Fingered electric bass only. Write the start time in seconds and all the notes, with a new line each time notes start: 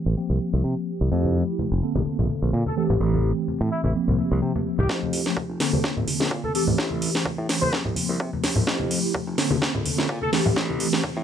0.06 A1
0.30 C2
0.53 C2
0.64 C3
1.01 C2
1.12 F2
1.72 F1
1.95 A#1
2.19 A#1
2.42 A#1
2.53 A#2
2.90 A1
3.00 A1
3.61 A2
3.84 A1
4.08 C2
4.31 C2
4.42 C3
4.79 C2
4.89 F2
5.49 F1
5.73 A#1
5.96 A#1
6.20 A#1
6.31 A#2
6.67 A1
6.78 A1
7.38 A2
7.62 A1
7.86 C2
8.09 C2
8.20 C3
8.56 C2
8.67 F2
9.27 F1
9.51 A#1
9.75 A#1
9.98 A#1
10.09 A#2
10.45 A1
10.56 A1
11.17 A2